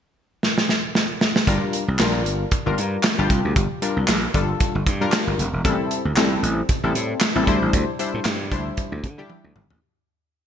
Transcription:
0.43 snare medium
0.58 snare medium
0.69 snare medium
0.95 snare medium
1.21 snare medium
1.36 snare loud
1.47 1.57 G1 loud
1.47 1.84 G3 medium
1.47 1.84 D4 medium
1.47 1.84 F4 medium
1.47 1.84 A#4 medium
1.47 kick loud
1.47 closed hi-hat loud
1.73 closed hi-hat medium
1.88 1.96 C2 medium
1.99 2.26 A#1 loud
1.99 2.45 G3 medium
1.99 2.45 D4 medium
1.99 2.45 F4 medium
1.99 2.45 A#4 medium
1.99 snare loud
1.99 clap medium
1.99 closed hi-hat medium
2.26 2.44 G1 medium
2.26 closed hi-hat medium
2.51 kick loud
2.51 closed hi-hat medium
2.66 2.74 G1 loud
2.66 3.00 G3 medium
2.66 3.01 D4 medium
2.66 3.01 F4 medium
2.66 3.01 A#4 medium
2.78 2.96 G2 medium
2.78 closed hi-hat medium
3.03 snare loud
3.03 clap medium
3.03 closed hi-hat medium
3.18 3.26 G1 medium
3.18 3.62 G3 medium
3.18 3.62 D4 medium
3.18 3.62 F4 medium
3.18 3.62 G4 loud
3.30 3.40 C2 medium
3.30 kick loud
3.30 closed hi-hat medium
3.45 3.53 D2 medium
3.56 3.66 G1 loud
3.56 kick loud
3.56 closed hi-hat loud
3.82 4.19 G3 medium
3.82 4.19 D4 medium
3.82 4.19 F4 medium
3.82 4.19 A#4 medium
3.82 closed hi-hat medium
3.97 4.05 C2 medium
4.08 4.26 A#1 loud
4.08 snare loud
4.08 clap loud
4.08 closed hi-hat medium
4.34 4.52 G1 medium
4.34 4.79 G3 medium
4.34 4.80 D4 medium
4.34 4.80 F4 medium
4.34 4.80 A4 medium
4.34 kick medium
4.34 closed hi-hat medium
4.60 kick loud
4.60 closed hi-hat medium
4.75 4.83 G1 loud
4.87 5.04 G2 loud
4.87 kick medium
4.87 closed hi-hat medium
5.01 5.44 G3 medium
5.01 5.44 D4 medium
5.01 5.45 F4 medium
5.01 5.45 A#4 loud
5.12 snare loud
5.12 clap medium
5.12 closed hi-hat medium
5.27 5.35 G1 medium
5.39 5.49 F1 medium
5.39 closed hi-hat medium
5.53 5.61 E1 medium
5.64 5.75 A1 loud
5.64 6.01 G3 medium
5.64 6.01 C4 medium
5.64 6.01 E4 medium
5.64 6.02 A4 loud
5.64 kick loud
5.64 closed hi-hat loud
5.91 closed hi-hat medium
6.05 6.13 D2 medium
6.16 6.35 C2 loud
6.16 6.62 G3 medium
6.16 6.62 C4 medium
6.16 6.62 E4 medium
6.16 6.62 A4 medium
6.16 snare loud
6.16 clap medium
6.16 closed hi-hat medium
6.43 6.61 A1 medium
6.43 closed hi-hat medium
6.69 kick loud
6.69 closed hi-hat medium
6.83 6.91 A1 loud
6.83 7.18 G3 medium
6.83 7.18 C4 medium
6.83 7.18 E4 medium
6.83 7.18 A4 medium
6.95 7.13 A2 medium
6.95 closed hi-hat medium
7.21 snare loud
7.21 clap medium
7.21 closed hi-hat medium
7.35 7.44 A1 medium
7.35 7.46 G3 medium
7.35 7.47 C4 medium
7.35 7.47 E4 medium
7.35 7.47 A4 loud
7.47 7.57 D2 loud
7.47 7.90 G3 loud
7.47 7.90 D4 medium
7.47 7.91 E4 medium
7.47 7.91 C5 loud
7.47 kick loud
7.47 closed hi-hat medium
7.62 7.70 A1 medium
7.73 7.83 D2 loud
7.73 kick loud
7.73 closed hi-hat loud
7.99 8.36 G3 medium
7.99 8.36 D4 medium
7.99 8.36 E4 medium
7.99 8.36 C5 medium
7.99 closed hi-hat medium
8.14 8.22 A2 medium
8.25 8.53 G2 loud
8.25 snare loud
8.25 clap medium
8.25 closed hi-hat medium
8.52 8.70 D2 medium
8.52 8.97 G3 medium
8.52 8.97 D4 medium
8.52 8.97 E4 medium
8.52 8.97 C5 medium
8.52 kick medium
8.52 closed hi-hat medium
8.77 kick loud
8.77 closed hi-hat medium
8.92 9.05 D2 medium
9.04 9.22 D3 loud
9.04 kick medium
9.04 closed hi-hat medium
9.18 9.62 G3 medium
9.18 9.62 D4 medium
9.18 9.62 E4 medium
9.18 9.62 G4 loud
9.30 high tom medium
9.44 9.52 D2 medium
9.56 9.66 G1 medium
9.56 mid tom medium
9.70 9.78 A1 medium
9.70 floor tom medium

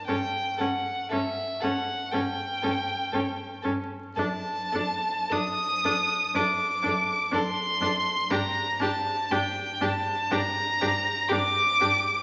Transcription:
0.07 0.16 G2 medium
0.07 0.16 C#4 soft
0.07 0.16 A4 soft
0.07 0.60 G5 medium
0.57 0.67 G2 soft
0.57 0.68 C#4 soft
0.57 0.65 A4 soft
0.57 1.11 F#5 medium
1.09 1.19 G2 medium
1.09 1.20 C#4 soft
1.09 1.17 A4 soft
1.09 1.63 E5 medium
1.60 1.70 G2 soft
1.60 1.72 C#4 soft
1.60 1.68 A4 soft
1.60 2.13 F#5 medium
2.11 2.21 G2 medium
2.11 2.22 C#4 medium
2.11 2.20 A4 soft
2.11 3.64 G5 medium
2.62 2.71 G2 medium
2.62 2.72 C#4 soft
2.62 2.70 A4 soft
3.12 3.20 G2 medium
3.12 3.22 C#4 medium
3.12 3.20 A4 medium
3.62 3.73 G2 medium
3.62 3.73 C#4 soft
3.62 3.70 A4 soft
4.16 4.25 F#2 medium
4.16 4.27 D4 medium
4.16 4.24 A4 medium
4.16 5.33 A5 medium
4.72 4.81 F#2 medium
4.72 4.83 D4 medium
4.72 4.80 A4 medium
5.29 5.39 F#2 medium
5.29 5.40 D4 medium
5.29 5.37 A4 medium
5.29 6.37 D#6 loud
5.84 5.92 F#2 medium
5.84 5.93 D4 medium
5.84 5.92 A4 medium
6.34 6.42 F#2 medium
6.34 6.43 D4 medium
6.34 6.43 A4 medium
6.34 7.35 D6 medium
6.83 6.93 F#2 medium
6.83 6.91 D4 medium
6.83 6.92 A4 medium
7.32 7.40 F#2 medium
7.32 7.40 D4 medium
7.32 7.42 A4 medium
7.32 8.32 C6 medium
7.80 7.88 F#2 medium
7.80 7.89 D4 medium
7.80 7.91 A4 medium
8.30 8.38 G2 medium
8.30 8.39 D4 medium
8.30 8.39 G4 medium
8.30 8.80 A#5 medium
8.80 8.88 G2 medium
8.80 8.88 D4 medium
8.80 8.89 G4 medium
8.80 9.33 A5 medium
9.31 9.39 G2 medium
9.31 9.40 D4 medium
9.31 9.39 G4 medium
9.31 9.83 G5 medium
9.81 9.89 G2 medium
9.81 9.89 D4 medium
9.81 9.90 G4 medium
9.81 10.33 A5 medium
10.31 10.39 G2 medium
10.31 10.39 D4 medium
10.31 10.40 G4 medium
10.31 11.31 A#5 loud
10.81 10.89 G2 medium
10.81 10.89 D4 medium
10.81 10.90 G4 medium
11.29 11.39 G2 medium
11.29 11.39 D4 medium
11.29 11.37 G4 medium
11.29 12.23 D6 loud
11.81 11.89 G2 medium
11.81 11.89 D4 medium
11.81 11.89 G4 medium

